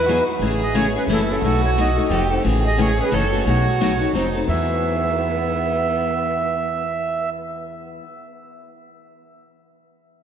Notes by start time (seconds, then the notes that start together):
Already playing: E2 B4
0.06 E3 F#3 B3 F#4 G#4
0.39 A1 C#3 E3 A3 C#4 G#4
0.63 D#5
0.75 C#3 E3 A3 C#4 G#4 C#5
0.96 A3 C#4 G#4 B4
1.07 F#1 C#3 E3 A3 C#4 E4 F#4
1.12 A4
1.31 A3 C#4 F#4 A4
1.42 B1 B2 F#3 A3 D#4 F#4
1.65 C#5
1.78 B2 F#3 A3 D#4 F#4 D#5
1.96 A3 D#4 F#4
2.10 F1 F3 C4 D#4 G4 A4
2.30 C4 D#4 A4
2.44 A1 C#3 E3 A3 C#4 G#4
2.67 D#5
2.78 C#3 E3 A3 C#4 G#4 C#5
2.97 A3 C#4 G#4
3.02 B4
3.11 F#1 C#3 E3 A3 C#4 F#4 A4 C#5
3.32 A3 C#4 F#4
3.46 B1 B2 F#3 A3 D#4 F#4
3.81 B2 F#3 A3 D#4 F#4
3.99 A3 D#4 F#4
4.13 F1 F3 C4 D#4 A4
4.35 C4 D#4 A4
4.48 E2 E3 B3 E5
4.53 G#4